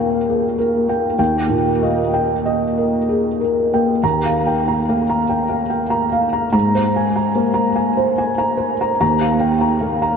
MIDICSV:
0, 0, Header, 1, 2, 480
1, 0, Start_track
1, 0, Key_signature, -3, "major"
1, 0, Tempo, 903614
1, 626, Time_signature, 3, 2, 24, 8
1, 626, Tempo, 946372
1, 2066, Tempo, 860832
1, 2546, Tempo, 824176
1, 5627, End_track
2, 0, Start_track
2, 0, Title_t, "Felt piano"
2, 0, Program_c, 0, 0
2, 0, Control_c, 0, 64, 127
2, 0, Note_on_c, 0, 39, 54
2, 0, Note_on_c, 0, 46, 38
2, 0, Note_on_c, 0, 58, 41
2, 0, Note_on_c, 0, 70, 37
2, 0, Note_on_c, 0, 77, 45
2, 0, Note_on_c, 0, 79, 45
2, 88, Note_off_c, 0, 77, 0
2, 158, Note_on_c, 0, 68, 36
2, 240, Note_off_c, 0, 70, 0
2, 308, Note_off_c, 0, 68, 0
2, 309, Note_on_c, 0, 70, 39
2, 468, Note_off_c, 0, 58, 0
2, 468, Note_on_c, 0, 58, 35
2, 475, Note_off_c, 0, 79, 0
2, 475, Note_on_c, 0, 79, 41
2, 564, Note_off_c, 0, 70, 0
2, 609, Note_off_c, 0, 39, 0
2, 624, Note_off_c, 0, 79, 0
2, 629, Note_off_c, 0, 58, 0
2, 629, Note_on_c, 0, 39, 45
2, 632, Note_on_c, 0, 79, 54
2, 635, Control_c, 0, 64, 0
2, 636, Note_off_c, 0, 46, 0
2, 719, Control_c, 0, 64, 127
2, 787, Note_on_c, 0, 46, 35
2, 788, Note_on_c, 0, 70, 38
2, 883, Note_off_c, 0, 79, 0
2, 955, Note_on_c, 0, 75, 39
2, 957, Note_on_c, 0, 58, 38
2, 1039, Note_off_c, 0, 46, 0
2, 1040, Note_off_c, 0, 70, 0
2, 1112, Note_on_c, 0, 79, 39
2, 1205, Note_off_c, 0, 75, 0
2, 1206, Note_off_c, 0, 58, 0
2, 1274, Note_on_c, 0, 75, 43
2, 1366, Note_off_c, 0, 79, 0
2, 1435, Note_on_c, 0, 70, 33
2, 1530, Note_off_c, 0, 75, 0
2, 1595, Note_on_c, 0, 68, 32
2, 1691, Note_off_c, 0, 70, 0
2, 1755, Note_off_c, 0, 68, 0
2, 1757, Note_on_c, 0, 70, 38
2, 1922, Note_on_c, 0, 58, 35
2, 1924, Note_on_c, 0, 79, 41
2, 2009, Note_off_c, 0, 70, 0
2, 2048, Note_off_c, 0, 39, 0
2, 2071, Note_off_c, 0, 58, 0
2, 2072, Note_off_c, 0, 79, 0
2, 2073, Note_on_c, 0, 39, 47
2, 2076, Note_on_c, 0, 82, 59
2, 2078, Control_c, 0, 64, 0
2, 2163, Control_c, 0, 64, 127
2, 2198, Note_on_c, 0, 77, 40
2, 2266, Note_off_c, 0, 82, 0
2, 2316, Note_on_c, 0, 79, 43
2, 2386, Note_off_c, 0, 77, 0
2, 2435, Note_on_c, 0, 82, 45
2, 2503, Note_off_c, 0, 79, 0
2, 2553, Note_on_c, 0, 77, 39
2, 2555, Note_on_c, 0, 58, 38
2, 2623, Note_off_c, 0, 82, 0
2, 2672, Note_on_c, 0, 82, 43
2, 2744, Note_off_c, 0, 77, 0
2, 2745, Note_off_c, 0, 58, 0
2, 2788, Note_on_c, 0, 79, 38
2, 2862, Note_off_c, 0, 82, 0
2, 2904, Note_on_c, 0, 77, 43
2, 2980, Note_off_c, 0, 79, 0
2, 3024, Note_on_c, 0, 79, 44
2, 3097, Note_off_c, 0, 77, 0
2, 3143, Note_on_c, 0, 82, 43
2, 3218, Note_off_c, 0, 79, 0
2, 3270, Note_on_c, 0, 77, 45
2, 3337, Note_off_c, 0, 82, 0
2, 3390, Note_on_c, 0, 82, 42
2, 3462, Note_off_c, 0, 77, 0
2, 3489, Note_off_c, 0, 39, 0
2, 3496, Note_off_c, 0, 82, 0
2, 3504, Note_on_c, 0, 44, 43
2, 3505, Note_on_c, 0, 82, 59
2, 3521, Control_c, 0, 64, 0
2, 3626, Control_c, 0, 64, 127
2, 3636, Note_on_c, 0, 72, 42
2, 3702, Note_off_c, 0, 82, 0
2, 3759, Note_on_c, 0, 80, 45
2, 3827, Note_off_c, 0, 72, 0
2, 3874, Note_on_c, 0, 82, 40
2, 3948, Note_off_c, 0, 80, 0
2, 3985, Note_on_c, 0, 58, 37
2, 3989, Note_on_c, 0, 72, 39
2, 4066, Note_off_c, 0, 82, 0
2, 4095, Note_on_c, 0, 82, 47
2, 4183, Note_off_c, 0, 58, 0
2, 4185, Note_off_c, 0, 72, 0
2, 4222, Note_on_c, 0, 80, 44
2, 4300, Note_off_c, 0, 82, 0
2, 4348, Note_on_c, 0, 72, 43
2, 4423, Note_off_c, 0, 80, 0
2, 4469, Note_on_c, 0, 80, 45
2, 4545, Note_off_c, 0, 72, 0
2, 4586, Note_on_c, 0, 82, 43
2, 4664, Note_off_c, 0, 80, 0
2, 4698, Note_on_c, 0, 72, 44
2, 4781, Note_off_c, 0, 82, 0
2, 4835, Note_on_c, 0, 82, 47
2, 4895, Note_off_c, 0, 72, 0
2, 4926, Note_off_c, 0, 44, 0
2, 4942, Note_off_c, 0, 82, 0
2, 4949, Note_on_c, 0, 39, 51
2, 4951, Note_on_c, 0, 82, 59
2, 4960, Control_c, 0, 64, 0
2, 5041, Control_c, 0, 64, 127
2, 5065, Note_on_c, 0, 77, 43
2, 5142, Note_off_c, 0, 82, 0
2, 5181, Note_on_c, 0, 79, 44
2, 5260, Note_off_c, 0, 77, 0
2, 5302, Note_on_c, 0, 82, 46
2, 5377, Note_off_c, 0, 79, 0
2, 5415, Note_on_c, 0, 77, 41
2, 5420, Note_on_c, 0, 58, 36
2, 5497, Note_off_c, 0, 82, 0
2, 5541, Note_on_c, 0, 82, 48
2, 5612, Note_off_c, 0, 77, 0
2, 5614, Note_off_c, 0, 58, 0
2, 5627, Note_off_c, 0, 39, 0
2, 5627, Note_off_c, 0, 82, 0
2, 5627, End_track
0, 0, End_of_file